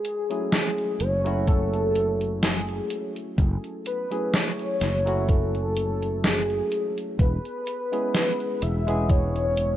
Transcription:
Already playing: G#4
0.05 closed hi-hat
0.30 F#3 A3 C#4 E4 G#4, closed hi-hat
0.52 snare, closed hi-hat
0.78 closed hi-hat
1.00 F#1 C#5, closed hi-hat
1.24 F#3 A3 C#4 E4 F#4, closed hi-hat
1.47 A4, kick, closed hi-hat
1.74 closed hi-hat
1.95 closed hi-hat
2.21 closed hi-hat
2.43 G#4, snare, closed hi-hat
2.69 closed hi-hat
2.90 closed hi-hat
3.16 closed hi-hat
3.38 F#1, kick, closed hi-hat
3.64 closed hi-hat
3.86 B4, closed hi-hat
4.11 F#3 A3 C#4 E4 G#4, closed hi-hat
4.34 C#5, snare, closed hi-hat
4.59 closed hi-hat
4.81 F#1, snare, closed hi-hat
5.05 F#3 A3 C#4 E4 F#4, closed hi-hat
5.29 A4, kick, closed hi-hat
5.55 closed hi-hat
5.77 closed hi-hat
6.02 closed hi-hat
6.24 G#4, snare, closed hi-hat
6.50 closed hi-hat
6.72 closed hi-hat
6.98 closed hi-hat
7.19 E1 B4, kick, closed hi-hat
7.45 closed hi-hat
7.67 closed hi-hat
7.92 G#3 B3 C#4 E4 G#4, closed hi-hat
8.15 snare, closed hi-hat
8.40 closed hi-hat
8.62 E1 E5, closed hi-hat
8.87 G#3 B3 C#4 E4 G#4, closed hi-hat
9.10 C#5, kick, closed hi-hat
9.36 closed hi-hat
9.57 closed hi-hat

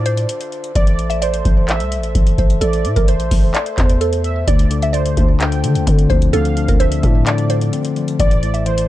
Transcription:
Already playing: A2 D3 D4 F4 C5 D5
0.06 C5, closed hi-hat
0.17 closed hi-hat
0.29 closed hi-hat
0.41 closed hi-hat
0.52 closed hi-hat
0.64 closed hi-hat
0.75 A1 A3 A4 D5 E5, kick, closed hi-hat
0.87 closed hi-hat
0.99 closed hi-hat
1.10 E5, closed hi-hat
1.22 C5 D5, closed hi-hat
1.34 closed hi-hat
1.45 A1, kick, closed hi-hat
1.68 E5, clap, closed hi-hat
1.80 C2, closed hi-hat
1.92 closed hi-hat
1.98 A1
2.03 closed hi-hat
2.15 A1, kick, closed hi-hat
2.27 closed hi-hat
2.38 A1 C5, kick, closed hi-hat
2.50 closed hi-hat
2.61 A1 A4 D5, closed hi-hat
2.73 closed hi-hat
2.85 A2, closed hi-hat
2.96 A1 A#4, kick, closed hi-hat
3.08 C5, closed hi-hat
3.20 closed hi-hat
3.31 A1, kick, closed hi-hat, open hi-hat
3.54 C5 D5, clap, closed hi-hat
3.66 closed hi-hat
3.78 E2 C5, kick, clap, closed hi-hat
3.90 closed hi-hat
4.01 A4, closed hi-hat
4.13 closed hi-hat
4.24 E5, closed hi-hat
4.47 D2 D3 D4 F4 C5 D5, kick, closed hi-hat
4.59 closed hi-hat
4.70 D3, closed hi-hat
4.82 E5, closed hi-hat
4.93 A3 C5 D5, closed hi-hat
5.06 closed hi-hat
5.17 D2 D4, kick, closed hi-hat
5.40 D3 G5, clap, closed hi-hat
5.52 closed hi-hat
5.64 D3, closed hi-hat
5.75 D2, closed hi-hat
5.87 D3 C4, kick, closed hi-hat
5.99 closed hi-hat
6.10 D2 F3 C5, kick, closed hi-hat
6.22 closed hi-hat
6.33 D2 D3 A4 F5, closed hi-hat
6.45 closed hi-hat
6.57 D3, closed hi-hat
6.68 D2 A#4, kick, closed hi-hat
6.79 A3 C5 E5, closed hi-hat
6.92 closed hi-hat
7.03 A2 D4, kick, closed hi-hat
7.26 D3 D5, clap, closed hi-hat
7.38 closed hi-hat
7.50 D3 C5, closed hi-hat
7.61 closed hi-hat
7.73 C4, closed hi-hat
7.85 closed hi-hat
7.96 F3, closed hi-hat
8.08 closed hi-hat
8.19 A1 A2 A3 A4 D5 E5, kick, closed hi-hat
8.31 closed hi-hat
8.43 A2, closed hi-hat
8.54 E5, closed hi-hat
8.66 E3 C5 D5, closed hi-hat
8.78 closed hi-hat

